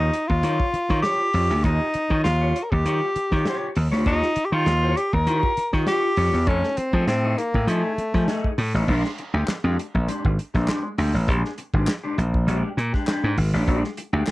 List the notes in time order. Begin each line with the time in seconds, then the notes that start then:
Already playing: D#4
0.00 F4 G4 C#5
0.13 muted clean electric guitar stroke, closed hi-hat
0.28 D#2 F4, muted clean electric guitar stroke, kick
0.43 D#3 F4 G4 C#5, closed hi-hat
0.60 kick
0.73 muted slap bass stroke, muted clean electric guitar stroke, closed hi-hat
0.89 D#3 F4 G4 C#5, kick, snare
1.03 F4 G4 C#5, snare, closed hi-hat
1.21 muted clean electric guitar stroke
1.34 F2 F4 G4 C#5, open hi-hat
1.50 D2, muted clean electric guitar stroke, snare
1.64 D#2 D#4 F4 G4 D#5, kick, closed hi-hat
1.94 muted slap bass stroke, muted clean electric guitar stroke, closed hi-hat
2.10 D#3 F4 G4 C#5, kick
2.24 D#2 F4, muted clean electric guitar stroke, snare, closed hi-hat
2.41 F4 G4 C#5
2.56 muted clean electric guitar stroke, closed hi-hat
2.63 A#4
2.71 D#2 G4, muted clean electric guitar stroke, kick
2.85 D#3 F4 G4 C#5, closed hi-hat
3.16 muted slap bass stroke, muted clean electric guitar stroke, closed hi-hat
3.31 D#3 F4 G4 C#5, kick, snare
3.45 F4 G4 C#5, snare, closed hi-hat
3.75 D#2, muted clean electric guitar stroke, open hi-hat
3.92 D2 F4 G4 C#5, snare
4.06 D#2 D#4 F4 G4 C#5, kick, closed hi-hat
4.22 muted clean electric guitar stroke, snare
4.36 muted slap bass stroke, muted clean electric guitar stroke, closed hi-hat
4.45 G4
4.52 D#3 F4 G4 C#5
4.66 D#2, muted clean electric guitar stroke, snare, closed hi-hat
4.83 F4 G4 C#5
4.97 G4, muted clean electric guitar stroke, closed hi-hat
5.13 D#2 A#4, muted clean electric guitar stroke, kick
5.27 D#3 F4 G4 C#5, closed hi-hat
5.43 kick
5.57 muted clean electric guitar stroke, muted slap bass stroke, closed hi-hat
5.73 D#3 F4 G4 C#5, kick, snare
5.87 F4 G4 C#5, snare, closed hi-hat
6.03 muted clean electric guitar stroke
6.16 F2 F4 G4 C#5, open hi-hat
6.33 E2, muted clean electric guitar stroke, snare
6.47 F2 A3 C#4 D#4 A4, kick, closed hi-hat
6.63 snare
6.77 C4, muted clean electric guitar stroke, muted slap bass stroke, closed hi-hat
6.93 F3 A3 D#4 G#4, kick
7.07 A2 C4, muted clean electric guitar stroke, snare, closed hi-hat
7.23 A3 D#4 G#4
7.38 A#3, muted clean electric guitar stroke, closed hi-hat
7.54 A2, muted clean electric guitar stroke, kick
7.67 F3 A3 D#4 G#4, closed hi-hat
7.98 muted slap bass stroke, muted clean electric guitar stroke, closed hi-hat
8.14 F3 A3 D#4 G#4, kick, snare
8.28 A3 D#4 G#4, snare, closed hi-hat
8.44 kick
8.58 A2, muted clean electric guitar stroke, open hi-hat
8.74 A1 A3 D#4 G#4, snare
8.88 A#1 G#3 D4 G4, kick, crash
9.04 muted clean electric guitar stroke, snare
9.18 muted clean electric guitar stroke, closed hi-hat
9.34 D2 G#3 D4 G4
9.48 muted slap bass stroke, muted clean electric guitar stroke, snare, clap, closed hi-hat
9.64 F2 G#3 D4 G4
9.78 muted clean electric guitar stroke, closed hi-hat
9.94 A#1, muted clean electric guitar stroke, kick
10.08 G#3 D4 G4, closed hi-hat
10.25 G#1, kick
10.38 muted clean electric guitar stroke, closed hi-hat
10.54 A#1 G#3 D4 G4, kick, snare
10.67 G#3 D4 G4, snare, clap, closed hi-hat
10.83 muted clean electric guitar stroke
10.98 D2 G#3 D4 G4, open hi-hat
11.14 A1, muted clean electric guitar stroke, snare
11.28 A#1 G#3 D4 G#4, kick, closed hi-hat
11.45 snare
11.58 muted clean electric guitar stroke, closed hi-hat
11.74 G#1 G#3 D4 G4, kick
11.87 muted clean electric guitar stroke, snare, clap, closed hi-hat
12.04 G#3 D4 G4
12.17 A#1, muted clean electric guitar stroke, closed hi-hat
12.33 muted clean electric guitar stroke, kick
12.47 A#1 G#3 D4 G4, closed hi-hat
12.77 A#2, muted clean electric guitar stroke, closed hi-hat
12.93 G#3 D4 G4, kick, snare
13.07 G#3 D4 G4, snare, clap, closed hi-hat
13.24 G#2
13.37 G#1, muted clean electric guitar stroke, open hi-hat
13.53 A1 G#3 D4 G4, snare
13.67 A#1 G#3 D4 G4, kick, closed hi-hat
13.84 muted clean electric guitar stroke, snare
13.97 muted clean electric guitar stroke, closed hi-hat
14.13 D2 G#3 D4 G4
14.27 muted clean electric guitar stroke, muted slap bass stroke, snare, clap, closed hi-hat